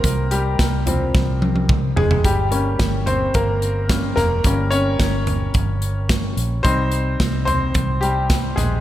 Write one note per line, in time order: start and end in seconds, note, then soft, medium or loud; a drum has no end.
0.00 0.55 C2 loud
0.00 0.86 F3 medium
0.00 0.32 G3 medium
0.00 0.28 A#3 medium
0.00 0.87 C4 medium
0.00 0.27 A#4 medium
0.00 2.27 C5 medium
0.00 kick medium
0.00 closed hi-hat medium
0.31 0.85 G3 medium
0.31 2.02 G4 medium
0.31 closed hi-hat medium
0.59 1.10 C2 medium
0.59 kick medium
0.59 snare medium
0.59 closed hi-hat medium
0.86 2.20 F3 soft
0.86 2.20 G3 soft
0.86 2.21 C4 medium
0.86 closed hi-hat medium
0.86 floor tom medium
1.15 1.93 C2 loud
1.15 kick loud
1.15 snare medium
1.42 high tom medium
1.56 high tom medium
1.69 kick loud
1.69 mid tom medium
1.96 2.23 F1 medium
1.96 2.23 G#3 medium
1.96 2.25 G#4 medium
1.96 floor tom medium
2.11 floor tom medium
2.24 2.76 G1 loud
2.24 2.49 G3 medium
2.24 3.03 G4 medium
2.24 kick medium
2.24 closed hi-hat medium
2.51 3.30 G3 medium
2.51 3.30 A#3 soft
2.51 3.31 C#4 medium
2.51 closed hi-hat medium
2.79 3.31 G1 medium
2.79 kick medium
2.79 snare medium
2.79 closed hi-hat medium
3.06 3.33 C4 medium
3.06 3.32 C5 medium
3.06 closed hi-hat medium
3.06 floor tom medium
3.34 4.13 G1 loud
3.34 3.86 A#3 medium
3.34 3.86 A#4 medium
3.34 kick loud
3.34 closed hi-hat medium
3.62 closed hi-hat medium
3.89 4.14 G3 soft
3.89 4.14 A#3 soft
3.89 4.15 C#4 medium
3.89 kick loud
3.89 snare loud
3.89 closed hi-hat loud
4.16 4.43 F1 medium
4.16 4.44 A#3 medium
4.16 4.73 A#4 medium
4.16 snare soft
4.16 closed hi-hat medium
4.16 floor tom medium
4.44 4.96 G1 loud
4.44 4.82 G3 medium
4.44 4.82 A#3 soft
4.44 4.72 C#4 medium
4.44 kick medium
4.44 closed hi-hat medium
4.71 6.34 C#4 medium
4.71 6.33 C#5 loud
4.71 closed hi-hat medium
4.99 5.51 G1 medium
4.99 kick medium
4.99 snare medium
4.99 closed hi-hat medium
5.27 closed hi-hat medium
5.27 floor tom medium
5.54 6.34 G1 loud
5.54 kick loud
5.54 closed hi-hat medium
5.82 closed hi-hat medium
6.09 kick loud
6.09 snare loud
6.09 closed hi-hat loud
6.37 6.63 A#1 medium
6.37 closed hi-hat medium
6.63 7.16 C2 loud
6.63 8.02 G3 medium
6.63 7.17 C4 medium
6.63 8.80 D#4 medium
6.63 7.15 C5 loud
6.63 kick medium
6.63 closed hi-hat medium
6.92 closed hi-hat medium
7.20 7.71 C2 medium
7.20 kick loud
7.20 snare loud
7.20 closed hi-hat medium
7.45 7.99 C4 medium
7.45 7.98 C5 medium
7.45 closed hi-hat medium
7.45 floor tom medium
7.74 8.54 C2 loud
7.74 kick loud
7.74 closed hi-hat medium
8.01 8.54 G3 medium
8.01 8.53 G4 medium
8.01 closed hi-hat medium
8.30 kick loud
8.30 snare medium
8.30 closed hi-hat medium
8.56 8.80 A#1 medium
8.56 8.64 G#3 medium
8.56 8.62 G#4 medium
8.56 snare soft
8.56 closed hi-hat medium
8.56 floor tom medium